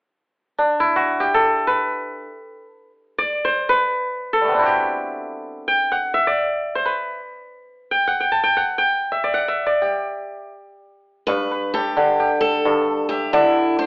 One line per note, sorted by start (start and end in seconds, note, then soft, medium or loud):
0.58 2.26 D4 medium
0.80 2.37 E4 medium
0.96 1.26 F#4 medium
1.20 2.61 G4 medium
1.34 2.66 A4 medium
1.67 2.90 B4 medium
3.18 4.29 D5 medium
3.45 3.75 C5 medium
3.69 4.58 B4 medium
4.33 5.65 A4 medium
4.41 6.75 G3 soft
4.41 6.44 A3 soft
4.48 6.35 B3 soft
4.48 6.32 C4 soft
4.55 6.23 D4 soft
4.59 6.16 E4 soft
4.59 5.74 F#4 soft
4.66 5.98 G4 medium
5.68 5.98 G5 medium
5.92 6.88 F#5 medium
6.14 7.17 E5 medium
6.27 7.38 D5 medium
6.75 6.92 C5 medium
6.86 8.08 B4 medium
7.91 8.13 G5 medium
8.07 8.26 F#5 medium
8.20 8.43 G5 medium
8.32 9.19 A5 medium
8.44 8.63 G5 medium
8.57 8.84 F#5 medium
8.78 9.40 G5 medium
9.12 9.48 E5 medium
9.24 9.66 D5 medium
9.34 9.88 F#5 medium
9.48 10.52 E5 medium
9.66 10.77 D5 medium
9.82 11.23 G4 medium
11.27 12.64 G2 medium
11.27 11.73 B4 medium
11.51 12.74 B4 medium
11.74 12.40 G4 medium
11.74 13.06 A4 medium
11.97 13.32 D3 medium
12.20 13.61 G4 medium
12.41 13.08 A4 medium
12.65 13.86 G2 medium
13.09 13.31 G4 medium
13.09 13.86 E5 medium
13.33 13.86 D3 medium
13.33 13.75 E4 medium
13.33 13.86 D5 medium
13.79 13.86 D4 medium
13.79 13.86 C5 medium